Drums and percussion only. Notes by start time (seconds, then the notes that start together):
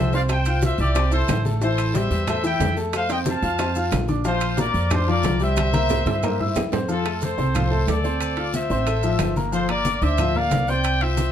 0.12 high bongo, high conga, short guiro, maracas
0.29 high bongo, high conga, high timbale, long guiro, claves, maracas
0.45 high conga, high timbale, maracas
0.62 high bongo, high conga, low timbale, short guiro, maracas
0.78 high bongo, short guiro, maracas
0.95 high bongo, high conga, high timbale, long guiro, claves, maracas
1.12 high bongo, high conga, maracas
1.28 high bongo, low bongo, high conga, high timbale, low timbale, short guiro, claves, maracas
1.45 high bongo, high conga, short guiro, maracas
1.61 high bongo, high conga, long guiro, maracas
1.78 high conga, high timbale, claves, maracas
1.94 high bongo, high conga, low timbale, short guiro, maracas
2.11 high bongo, high conga, short guiro, maracas
2.27 high bongo, high conga, low conga, high timbale, long guiro, claves, maracas
2.44 high bongo, high conga, maracas
2.60 high bongo, low bongo, high conga, high timbale, low timbale, short guiro, maracas
2.77 high bongo, high conga, short guiro, maracas
2.93 high bongo, high conga, high timbale, long guiro, claves, maracas
3.09 high conga, high timbale, maracas
3.26 high bongo, high conga, low timbale, short guiro, maracas
3.42 high bongo, high conga, short guiro, maracas
3.59 high bongo, high conga, high timbale, long guiro, claves, maracas
3.75 high bongo, high conga, maracas
3.91 high bongo, low bongo, high conga, high timbale, low timbale, short guiro, claves, maracas
4.08 high bongo, high conga, short guiro, maracas
4.24 high bongo, high conga, long guiro, maracas
4.41 high conga, high timbale, claves, maracas
4.57 high bongo, high conga, low timbale, short guiro, maracas
4.74 high bongo, high conga, short guiro, maracas
4.91 high bongo, high conga, low conga, high timbale, long guiro, claves, maracas
5.08 high bongo, high conga
5.23 high bongo, low bongo, high conga, high timbale, low timbale, short guiro, maracas
5.39 high bongo, high conga, short guiro, maracas
5.56 high bongo, high conga, high timbale, long guiro, claves, maracas
5.73 high conga, high timbale, maracas
5.89 high bongo, low conga, high timbale, short guiro, maracas
6.06 high bongo, high conga, high timbale, short guiro, maracas
6.23 low conga, low timbale, long guiro, claves, maracas
6.40 low conga
6.56 low conga, low timbale, short guiro, claves, maracas
6.72 low bongo, low conga, low timbale, short guiro, maracas
6.89 high conga, long guiro, maracas
7.06 high conga, high timbale, claves
7.21 high conga, low timbale, short guiro, maracas
7.38 high conga, short guiro, maracas
7.55 high conga, low conga, high timbale, long guiro, claves, maracas
7.72 high conga, low conga
7.88 high conga, high timbale, low timbale, short guiro, maracas
8.04 high conga, short guiro, maracas
8.21 high conga, high timbale, long guiro, claves, maracas
8.37 high conga, high timbale
8.54 high conga, low timbale, short guiro, maracas
8.70 high conga, short guiro, maracas
8.87 high conga, high timbale, long guiro, claves, maracas
9.03 high conga, maracas
9.19 high conga, high timbale, low timbale, short guiro, claves, maracas
9.36 high conga, short guiro, maracas
9.53 high conga, long guiro, maracas
9.69 high conga, high timbale, claves
9.85 high conga, low timbale, short guiro, maracas
10.02 high conga, short guiro, maracas
10.18 high conga, low conga, high timbale, long guiro, claves, maracas
10.35 high conga, low conga
10.51 high conga, high timbale, low timbale, short guiro, maracas
10.68 high conga, short guiro, maracas
10.84 high conga, high timbale, long guiro, claves, maracas
11.00 high conga, high timbale
11.17 high conga, low timbale, short guiro, maracas